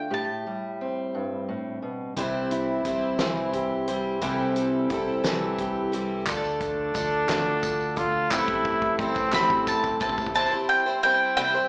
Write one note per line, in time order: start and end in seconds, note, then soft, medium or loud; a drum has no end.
0.00 0.12 D3 medium
0.00 0.13 G5 medium
0.10 1.47 A2 medium
0.10 2.13 G4 soft
0.10 1.46 A5 medium
0.46 3.87 G3 soft
0.81 2.14 C4 soft
1.15 1.49 G2 medium
1.49 1.82 A2 soft
1.82 2.16 B2 medium
2.16 2.81 C2 medium
2.16 2.86 C3 medium
2.16 3.20 C3 medium
2.16 3.21 E3 medium
2.16 2.85 G3 medium
2.16 2.85 C4 soft
2.16 2.86 C4 medium
2.16 2.87 E4 medium
2.16 2.88 C5 medium
2.16 kick soft
2.16 closed hi-hat medium
2.51 3.54 E4 soft
2.51 closed hi-hat medium
2.85 3.17 C2 medium
2.85 3.20 G3 medium
2.85 4.18 C4 soft
2.85 3.19 C4 medium
2.85 3.19 E4 medium
2.85 3.19 C5 medium
2.85 kick medium
2.85 closed hi-hat medium
3.18 4.18 C2 medium
3.18 4.18 E3 medium
3.18 3.89 E3 medium
3.18 3.89 G3 medium
3.18 3.89 C4 medium
3.18 3.88 E4 medium
3.18 3.86 C5 medium
3.18 snare loud
3.18 closed hi-hat medium
3.22 3.90 C3 medium
3.53 4.18 G4 medium
3.53 kick soft
3.53 closed hi-hat medium
3.88 4.21 G3 medium
3.88 4.21 G3 soft
3.88 4.21 C4 soft
3.88 4.22 E4 medium
3.88 4.22 C5 medium
3.88 closed hi-hat medium
4.21 4.87 C2 medium
4.21 5.24 C3 medium
4.21 4.90 C3 medium
4.21 5.23 E3 medium
4.21 4.91 E3 medium
4.21 4.89 G3 medium
4.21 5.93 G3 medium
4.21 4.89 C4 loud
4.21 4.91 C4 medium
4.21 4.91 E4 medium
4.21 4.56 G4 medium
4.21 4.93 A4 medium
4.21 kick medium
4.21 closed hi-hat medium
4.56 5.59 A4 medium
4.56 closed hi-hat medium
4.90 5.23 C2 medium
4.90 5.24 G3 medium
4.90 5.24 C4 medium
4.90 6.24 C4 medium
4.90 5.23 E4 medium
4.90 5.23 A4 medium
4.90 kick medium
4.90 closed hi-hat medium
5.24 6.23 C2 loud
5.24 5.94 C3 medium
5.24 6.23 E3 medium
5.24 5.94 E3 medium
5.24 5.93 G3 medium
5.24 5.93 C4 medium
5.24 5.92 E4 medium
5.24 5.92 A4 medium
5.24 snare loud
5.24 closed hi-hat medium
5.59 6.24 G4 medium
5.59 kick medium
5.59 closed hi-hat medium
5.92 6.28 G3 medium
5.92 6.26 G3 soft
5.92 6.27 C4 medium
5.92 6.27 E4 soft
5.92 6.27 A4 medium
5.92 closed hi-hat medium
6.26 6.91 D2 loud
6.26 6.95 D3 medium
6.26 6.94 A3 medium
6.26 7.99 D4 loud
6.26 6.94 D4 loud
6.26 6.95 F4 medium
6.26 6.97 A4 loud
6.26 kick medium
6.26 clap loud
6.26 closed hi-hat medium
6.26 tambourine medium
6.44 tambourine soft
6.61 kick medium
6.61 closed hi-hat medium
6.61 tambourine soft
6.94 7.27 D2 medium
6.94 7.29 A3 medium
6.94 7.29 D4 medium
6.94 7.28 F4 medium
6.94 7.27 A4 medium
6.94 kick medium
6.94 closed hi-hat medium
6.94 tambourine medium
7.29 8.27 D2 loud
7.29 7.98 D3 medium
7.29 7.98 A3 medium
7.29 7.98 D4 medium
7.29 7.97 F4 medium
7.29 7.95 A4 medium
7.29 kick medium
7.29 snare loud
7.29 clap medium
7.29 closed hi-hat medium
7.63 kick medium
7.63 closed hi-hat medium
7.63 tambourine medium
7.80 tambourine soft
7.96 8.31 D4 medium
7.96 8.32 F4 loud
7.96 8.32 F4 medium
7.96 8.31 A4 medium
7.96 kick medium
7.96 closed hi-hat medium
8.31 8.95 A1 loud
8.31 8.99 A2 loud
8.31 8.99 E3 medium
8.31 8.98 G3 loud
8.31 8.99 C4 loud
8.31 8.98 E4 loud
8.31 9.00 E4 loud
8.31 9.00 A4 loud
8.31 kick medium
8.31 clap loud
8.31 tambourine medium
8.48 kick loud
8.65 kick medium
8.82 kick medium
8.99 9.31 A1 loud
8.99 9.33 G3 medium
8.99 9.97 C4 loud
8.99 9.32 C4 medium
8.99 9.32 E4 medium
8.99 9.31 A4 medium
8.99 kick loud
9.16 kick loud
9.16 clap soft
9.16 tambourine soft
9.32 10.31 A1 loud
9.32 10.02 A2 medium
9.32 10.01 E3 medium
9.32 10.01 G3 medium
9.32 10.01 C4 medium
9.32 10.00 E4 medium
9.32 9.99 A4 medium
9.32 9.68 B5 loud
9.32 kick loud
9.32 snare loud
9.32 clap loud
9.50 kick loud
9.67 10.00 A5 loud
9.67 kick loud
9.67 tambourine loud
9.84 kick loud
9.84 clap soft
9.84 tambourine soft
10.00 10.34 G3 medium
10.00 10.16 C4 medium
10.00 10.34 C4 medium
10.00 10.35 E4 medium
10.00 10.34 A4 medium
10.00 10.33 A5 loud
10.00 kick loud
10.00 clap soft
10.09 kick loud
10.18 kick loud
10.18 tambourine soft
10.26 kick loud
10.35 10.52 C3 medium
10.35 10.52 E3 medium
10.35 10.52 G3 medium
10.35 10.51 C4 medium
10.35 10.51 E4 medium
10.35 10.50 C5 medium
10.35 10.69 A5 loud
10.51 10.87 G3 medium
10.51 10.86 C4 soft
10.51 10.86 E4 medium
10.51 10.85 C5 medium
10.69 11.00 G5 loud
10.86 11.01 G3 soft
10.86 11.03 C4 soft
10.86 11.03 E4 medium
10.86 11.03 C5 medium
11.03 11.36 G3 medium
11.03 11.37 C4 medium
11.03 11.37 E4 medium
11.03 11.38 C5 medium
11.03 11.36 G5 loud
11.37 11.53 C3 medium
11.37 11.54 E3 medium
11.37 11.54 G3 medium
11.37 11.54 C4 medium
11.37 11.54 E4 medium
11.37 11.53 C5 medium
11.37 11.68 G5 loud
11.55 11.68 G3 soft
11.55 11.68 C4 soft
11.55 11.68 E4 medium
11.55 11.68 C5 medium